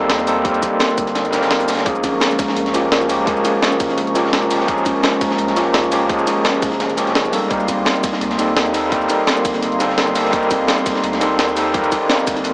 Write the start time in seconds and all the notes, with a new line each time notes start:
Already playing: G3 A#3 C4 D#4 A4 A#4 D#5 C6
0.09 D#2 A#4, snare, closed hi-hat
0.19 snare, shaker
0.26 G3 A#3 C4 D#4 A4, open hi-hat, shaker
0.42 G3 A#3 C4 D#4 G4, kick, closed hi-hat
0.47 A#4
0.54 closed hi-hat, shaker
0.62 G3, kick, snare, closed hi-hat, shaker
0.80 C4, snare, closed hi-hat
0.90 shaker
0.98 G1 G3, kick, closed hi-hat, shaker
1.07 snare, closed hi-hat
1.15 G3, snare, closed hi-hat
1.25 closed hi-hat, shaker
1.30 G3 A#3 C4 D#4, snare, closed hi-hat, shaker
1.36 A#4
1.42 snare, closed hi-hat
1.51 A#4, snare, closed hi-hat
1.60 snare, closed hi-hat, shaker
1.68 D#4, snare, closed hi-hat, open hi-hat, shaker
1.73 snare, closed hi-hat
1.77 snare, closed hi-hat
1.83 A#1 F3 G#3 A#3 C#4 A#4 A#5 C#6, kick, closed hi-hat
1.89 G#4
1.95 shaker
2.04 C#4, kick, snare, closed hi-hat, ride, shaker
2.20 C#4, snare, closed hi-hat
2.31 closed hi-hat, shaker
2.38 G#3, kick, snare, closed hi-hat, ride, shaker
2.48 snare
2.56 C2 G#3, closed hi-hat
2.66 snare, closed hi-hat
2.73 A#1 F3 G#3 A#3 C#4 F4 G4, snare, closed hi-hat, ride, shaker
2.92 C#2 A#4, snare, closed hi-hat
3.01 snare, shaker
3.08 F3 G#3 A#3 C#4 F4 G4, closed hi-hat, open hi-hat, ride, shaker
3.25 F3 G#3 A#3 C#4, kick, closed hi-hat
3.30 G#4
3.37 shaker
3.45 G#3, snare, closed hi-hat, ride, shaker
3.62 C#4, snare, closed hi-hat
3.72 shaker
3.79 F1 G#3, kick, closed hi-hat, ride, shaker
3.90 snare, closed hi-hat
3.98 G#3, closed hi-hat
4.07 closed hi-hat
4.14 F3 G#3 A#3 C#4 F4 G4, snare, closed hi-hat, ride, shaker
4.26 snare
4.33 A#4, snare, closed hi-hat
4.42 snare, shaker
4.49 F3 G#3 A#3 C#4 F4 G4, snare, closed hi-hat, open hi-hat, ride, shaker
4.60 snare
4.66 A#1 F3 G#3 A#3 C#4, kick, closed hi-hat
4.71 G#4
4.78 shaker
4.85 C#4, kick, snare, closed hi-hat, ride, shaker
5.03 C#4, snare, closed hi-hat
5.13 closed hi-hat, shaker
5.20 G#3, kick, snare, closed hi-hat, ride, shaker
5.31 snare
5.38 C2 G#3, closed hi-hat
5.47 snare, closed hi-hat
5.55 A#1 F3 G#3 A#3 C#4 F4 G4, snare, closed hi-hat, ride, shaker
5.74 C#2 A#4, snare, closed hi-hat
5.84 snare, shaker
5.91 F3 G#3 A#3 C#4 F4 G4, closed hi-hat, open hi-hat, ride, shaker
6.07 F3 G#3 A#3 C#4, kick, closed hi-hat
6.12 G#4
6.19 shaker
6.27 G#3, snare, closed hi-hat, ride, shaker
6.44 C#4, snare, closed hi-hat
6.54 shaker
6.62 F1 G#3, kick, closed hi-hat, ride, shaker
6.72 snare, closed hi-hat
6.80 G#3, snare, closed hi-hat
6.90 closed hi-hat, shaker
6.96 F3 G#3 A#3 C#4 G4, snare, closed hi-hat, ride, shaker
7.07 snare, closed hi-hat
7.15 G#4, snare, closed hi-hat
7.25 snare, shaker
7.32 G3 A#3 C4 D#4 A4 D#5 C6, open hi-hat, ride, shaker
7.48 C2 G3 A#3 C4 D#4, kick, closed hi-hat
7.53 A#4
7.60 shaker
7.68 C4, kick, snare, closed hi-hat, ride, shaker
7.85 C4, snare, closed hi-hat
7.95 closed hi-hat, shaker
8.03 G3, kick, snare, closed hi-hat, ride, shaker
8.13 snare
8.21 D2 G3, closed hi-hat
8.30 snare, closed hi-hat
8.38 C2 G3 A#3 C4 D#4 A4, snare, closed hi-hat, ride, shaker
8.56 D#2 A#4, snare, closed hi-hat
8.66 snare, shaker
8.73 G3 A#3 C4 D#4 A4, closed hi-hat, open hi-hat, ride, shaker
8.89 G3 A#3 C4 D#4, kick, closed hi-hat
8.94 A#4
9.01 shaker
9.08 G3, snare, closed hi-hat, ride, shaker
9.27 C4, snare, closed hi-hat
9.37 shaker
9.45 G1 G3, kick, closed hi-hat, ride, shaker
9.54 snare, closed hi-hat
9.62 G3, closed hi-hat
9.72 closed hi-hat
9.79 G3 A#3 C4 D#4 A4, snare, closed hi-hat, ride, shaker
9.90 snare
9.98 A#4, snare, closed hi-hat
10.07 snare, shaker
10.14 G3 A#3 C4 D#4 A4, snare, closed hi-hat, open hi-hat, ride, shaker
10.25 snare
10.30 C2 G3 A#3 C4 D#4, kick, closed hi-hat
10.36 A#4
10.43 shaker
10.51 C4, kick, snare, closed hi-hat, ride, shaker
10.67 C4, snare, closed hi-hat
10.78 closed hi-hat, shaker
10.86 G3, kick, snare, closed hi-hat, ride, shaker
10.96 snare
11.03 D2 G3, closed hi-hat
11.13 snare, closed hi-hat
11.20 C2 G3 A#3 C4 D#4 A4, snare, closed hi-hat, ride, shaker
11.39 D#2 A#4, snare, closed hi-hat
11.48 snare, shaker
11.55 G3 A#3 C4 D#4 A4, closed hi-hat, open hi-hat, ride, shaker
11.72 G3 A#3 C4 D#4, kick, closed hi-hat
11.77 A#4
11.84 closed hi-hat, shaker
11.92 G3, kick, snare, closed hi-hat, ride, shaker
12.09 C4, snare, closed hi-hat
12.19 shaker
12.27 G1 G3, kick, closed hi-hat, ride, shaker
12.36 snare, closed hi-hat
12.44 G3, closed hi-hat